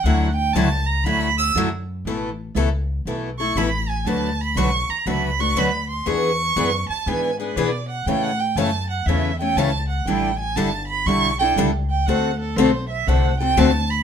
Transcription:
X:1
M:4/4
L:1/8
Q:"Swing" 1/4=120
K:D
V:1 name="Violin"
f g a _b =b e' z2 | z4 z c' b ^g | a b c' _b =b c' b =c' | c'3 a ^g B d f |
(3g f g a f e g a f | g ^g a b c' =g z g | f A =c e f g a b |]
V:2 name="Steel-string acoustic guitar"
[D,F,EA] z [D,F,EA] z [D,F,EA] z [D,F,EA] z | [A,B,EA] z [A,B,EA] z [A,B,EA] z [A,B,EA] z | [D,F,A,DFB] z [D,F,A,DFB] z [D,F,A,DFB] z [D,F,A,DFB] z | [E,B,D^GB] z [E,B,DGB] z [E,B,DGB] z [E,B,DGB] z |
[E,A,CEA] z [E,A,CEA] z [E,A,CEA] z [E,A,CEA] z | [D,G,DEA] z [D,G,DEA] z [D,G,DEA] z [D,G,DEA] z | [D,A,=CFA] z [D,A,CFA] z [D,A,CFA] z [D,A,CFA] z |]
V:3 name="Steel-string acoustic guitar"
[D,F,A,EF] z [D,F,A,EF] z [D,F,A,EF] z [D,F,A,EF] z | [B,,E,A,EA] z [B,,E,A,EA] z [B,,E,A,EA] [A,EA] [B,,E,A,EA] z | [D,F,A,DFB] z [D,F,A,DFB] z [D,F,A,DFB] [A,DFB] [D,F,A,DFB] z | [E,B,D^G] z [E,B,DG] z [E,B,DG] [B,DG] [E,B,DG] z |
[C,E,A,CA] z [C,E,A,CA] z [C,E,A,CA] [A,CA] [C,E,A,CA] z | [D,G,DEA] z [D,G,DEA] z [D,G,DEA] [DEA] [D,G,DEA] z | [D,A,=CFA] z [D,A,CFA] z [D,A,CFA] [CFA] [D,A,CFA] z |]
V:4 name="Upright bass" clef=bass
D,,2 C,,2 D,,2 F,,2 | A,,,2 C,,2 B,,,2 A,,,2 | D,,2 B,,, z C,,2 D,,2 | E,,2 F,, z ^G,,2 B,,2 |
A,,2 F,,2 E,,2 C,,2 | A,,,2 G,,,2 B,,,2 C,,2 | D,,2 B,,,2 =C,,2 D,,2 |]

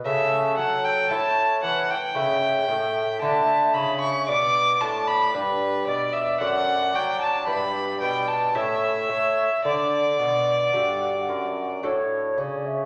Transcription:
X:1
M:3/4
L:1/16
Q:1/4=56
K:D
V:1 name="Violin"
e2 f g a2 f g4- g | a2 b c' d'2 a b B2 d e | f2 g a b2 g a e4 | d8 z4 |]
V:2 name="Flute"
A4 c3 z e2 e2- | e4 d4 d4- | d8 c2 c2 | f8 c2 d e |]
V:3 name="Lute"
z4 [A,EA]4 [A,EA]4 | z4 [Dd]4 [Dd]4 | [A,Dd]4 [B,EB]4 [CEA]4 | z4 [DFA]4 [DFA]4 |]
V:4 name="Lute" clef=bass
C,2 F,2 A,2 E,2 C,2 A,,2 | D,2 C,2 B,,2 A,,2 G,,2 B,,2 | F,,2 F,2 G,,2 B,,2 A,,2 A,2 | D,2 B,,2 G,,2 F,,2 A,,2 C,2 |]
V:5 name="Bassoon" clef=bass
C,2 F,2 A,2 E,2 C,2 A,,2 | D,2 C,2 B,,2 A,,2 G,,2 B,,2 | F,,2 F,2 G,,2 B,,2 A,,2 A,2 | D,2 B,,2 G,,2 F,,2 A,,2 C,2 |]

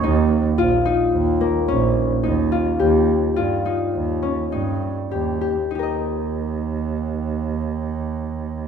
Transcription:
X:1
M:5/4
L:1/8
Q:1/4=104
K:Ebmix
V:1 name="Harp"
E2 F E2 B, D2 E F | G2 F E2 D E2 G G | [EGBe]8- [EGBe]2 |]
V:2 name="Double bass" clef=bass
E,,2 B,,,2 E,,2 B,,,2 E,,2 | E,,2 G,,2 E,,2 G,,2 E,,2 | E,,8- E,,2 |]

